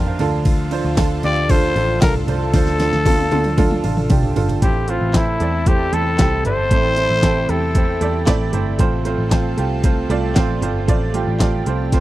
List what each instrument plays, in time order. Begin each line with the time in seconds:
Already playing: picked electric bass F2, upright piano A#2 D4 F4 G4 A#4 D5 E5 G5 A5, analog synth pad D3 F3 A#3 F4 A#4
0.07 upright piano C5 F5, floor tom
0.19 picked electric bass D2, upright piano D3 D4 F4 A4, analog synth pad A3 A4, floor tom, ride
0.45 kick, ride
0.71 upright piano D4 F4 C5, ride
0.85 picked electric bass D2
0.97 upright piano D4 F4 A4, kick, snare, clap, ride
1.23 picked electric bass D2, upright piano D4 F4 G4, trumpet D5, ride
1.36 ride
1.49 upright piano D4 F4 A4, trumpet C5, kick, ride
1.75 picked electric bass A1, upright piano D4 F4 A4, ride
2.01 picked electric bass C2, upright piano D4 F4 A4, trumpet A#4, kick, snare, clap, ride
2.15 floor tom
2.27 picked electric bass C2, upright piano D3 D4 F4 C5, trumpet A4, floor tom, ride
2.54 picked electric bass D2, upright piano D4 F4 C5, kick, snare, ride
2.67 snare
2.79 upright piano D4 F4 A4, snare, ride
2.93 picked electric bass D2, snare
3.05 upright piano D4 F4 A4, kick, high tom, ride
3.19 high tom
3.32 picked electric bass D2, upright piano D4 F4 A4, high tom, ride
3.44 mid tom, ride
3.57 upright piano D4 F4 A4, kick, mid tom, ride
3.71 mid tom
3.84 picked electric bass A1, upright piano D4 F4 A4, mid tom, ride
3.97 mid tom
4.10 picked electric bass C2, upright piano D4 F4 G4, kick, mid tom, ride
4.23 floor tom
4.36 picked electric bass G1, upright piano D4 F4 A4, floor tom, ride
4.49 floor tom, ride
4.62 picked electric bass A1, upright piano A2 A3 C4 E4 C5, analog synth pad C3 E3 A3 E4 A4, trumpet G4, kick, closed hi-hat
4.88 upright piano A3 C4 E4 C5, trumpet F4, closed hi-hat
5.01 picked electric bass A1
5.14 upright piano A3 C4 E4 C5, trumpet E4, kick, snare, clap, closed hi-hat
5.40 picked electric bass E2, upright piano A3 C4 E4 D5, closed hi-hat
5.66 upright piano A3 C4 E4 C5, trumpet G4, kick, closed hi-hat
5.92 picked electric bass E2, upright piano A3 C4 E4 A4, trumpet A4, closed hi-hat
6.18 picked electric bass C2, upright piano A3 C4 E4 G4, kick, snare, clap, closed hi-hat
6.45 picked electric bass G1, upright piano A3 C4 E4 D5, trumpet C5, closed hi-hat, floor tom
6.71 picked electric bass A1, upright piano A2 A3 C4 E4 C5, analog synth pad G4, kick, closed hi-hat
6.96 upright piano A3 C4 E4 C5, closed hi-hat
7.10 picked electric bass A1
7.22 upright piano A3 C4 E4 A4, kick, snare, clap, closed hi-hat
7.49 picked electric bass E2, upright piano A3 C4 E4 G4, trumpet A4, closed hi-hat
7.75 upright piano A3 C4 E4 C5, kick, closed hi-hat
8.01 picked electric bass E2, upright piano A3 C4 E4 D5, closed hi-hat
8.26 picked electric bass A1, upright piano A3 C4 E4 D5, kick, snare, clap, closed hi-hat
8.53 picked electric bass G1, upright piano A3 C4 E4 C5, closed hi-hat, floor tom
8.79 picked electric bass A1, upright piano A2 A3 C4 F4 C5, analog synth pad F3 F4 A4, kick, closed hi-hat
9.05 upright piano A3 C4 F4 C5, closed hi-hat
9.18 picked electric bass A1
9.31 upright piano A3 C4 F4 C5, kick, snare, clap, closed hi-hat
9.57 picked electric bass C2, upright piano A3 C4 F4 G4, closed hi-hat
9.84 upright piano A3 C4 F4 C5, kick, closed hi-hat
10.09 picked electric bass C2, upright piano A3 C4 F4 D5, closed hi-hat
10.35 picked electric bass A1, upright piano A3 C4 F4 C5, kick, snare, clap, closed hi-hat
10.62 picked electric bass G1, upright piano A3 C4 F4 C5, closed hi-hat, floor tom
10.87 picked electric bass A1, upright piano A2 A3 C4 F4 D5, analog synth pad G4, kick, closed hi-hat
11.14 upright piano A3 C4 F4 G4, closed hi-hat
11.27 picked electric bass A1
11.40 upright piano A3 C4 F4 D5, kick, snare, clap, closed hi-hat
11.66 picked electric bass C2, upright piano A3 C4 F4 C5, closed hi-hat
11.92 upright piano A3 C4 F4 C5, kick, snare, closed hi-hat